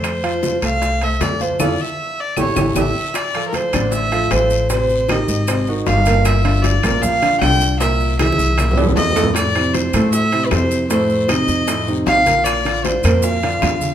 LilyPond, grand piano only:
\new Staff \with { instrumentName = "Grand piano" } { \time 4/4 \key f \major \tempo 4 = 155 <a a' c''>8 <f f' f''>4 <a a' c''>4 <a a' c''>4 <f f' f''>8 | <e' f' a'>8 r4. <e' g' a'>8 <e' g' a'>8 <e' g' a'>8 r8 | \key d \minor r8 <f f' a'>4 <d d' d''>4 <f f' a'>8 <f f' a'>4 | <c c' c''>4 <ees ees' g'>4 <bis, bis bis'>8 <dis dis' fis'>4 <ais, ais ais'>8~ |
<ais, ais ais'>8 <d d' f'>4 <bes, bes bes'>4 <d d' f'>8 <d d' f'>4 | <bes, bes bes'>4 <e e' gis'>4 <bes, bes bes'>8 <e e' gis'>4 <a, a a'>8~ | <a, a a'>8 <c c' e'>4 <a, a a'>4 <c c' e'>8 <c c' e'>4 | <a, a a'>4 <c c' ees'>4 <a, a a'>8 <c c' ees'>4 <bes, bes bes'>8~ |
<bes, bes bes'>8 <d d' f'>4 <bes, bes bes'>4 <d d' f'>8 <d d' f'>4 | }